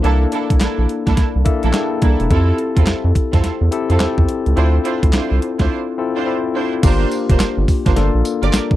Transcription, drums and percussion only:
0.04 closed hi-hat
0.32 closed hi-hat
0.50 kick, closed hi-hat
0.60 snare, clap, closed hi-hat
0.89 closed hi-hat
1.07 kick, snare, closed hi-hat
1.17 kick, snare, closed hi-hat
1.46 kick, closed hi-hat
1.63 closed hi-hat
1.73 snare, clap, closed hi-hat
2.02 kick, closed hi-hat
2.20 closed hi-hat
2.30 kick, closed hi-hat
2.58 closed hi-hat
2.77 kick, closed hi-hat
2.86 snare, clap, closed hi-hat
3.15 kick, closed hi-hat
3.33 kick, snare, closed hi-hat
3.44 snare, closed hi-hat
3.72 closed hi-hat
3.90 closed hi-hat
4.00 snare, clap, closed hi-hat
4.18 kick
4.29 closed hi-hat
4.46 closed hi-hat
4.57 closed hi-hat
4.85 closed hi-hat
5.03 kick, closed hi-hat
5.13 snare, clap, closed hi-hat
5.42 closed hi-hat
5.59 kick, snare, closed hi-hat
6.83 kick, closed hi-hat, crash, tambourine
7.12 closed hi-hat, tambourine
7.29 kick, closed hi-hat
7.39 snare, clap, closed hi-hat, tambourine
7.68 kick, open hi-hat, tambourine
7.86 kick, snare, closed hi-hat
7.96 snare, closed hi-hat
8.25 closed hi-hat, tambourine
8.43 closed hi-hat
8.53 snare, clap, closed hi-hat, tambourine
8.71 kick

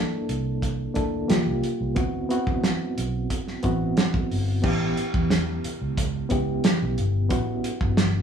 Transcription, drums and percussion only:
0.29 closed hi-hat
0.62 kick, closed hi-hat
0.95 kick, closed hi-hat
1.30 snare, closed hi-hat
1.64 closed hi-hat
1.96 kick, closed hi-hat
2.30 closed hi-hat
2.47 kick
2.64 snare, closed hi-hat
2.98 closed hi-hat
3.30 kick, closed hi-hat
3.48 snare
3.63 kick, closed hi-hat
3.97 snare, closed hi-hat
4.14 kick
4.31 open hi-hat
4.63 kick, crash
4.97 closed hi-hat
5.14 kick
5.30 snare, closed hi-hat
5.64 closed hi-hat
5.97 kick, closed hi-hat
6.30 kick, closed hi-hat
6.64 snare, closed hi-hat
6.98 closed hi-hat
7.30 kick, closed hi-hat
7.64 closed hi-hat
7.81 kick
7.97 snare, closed hi-hat

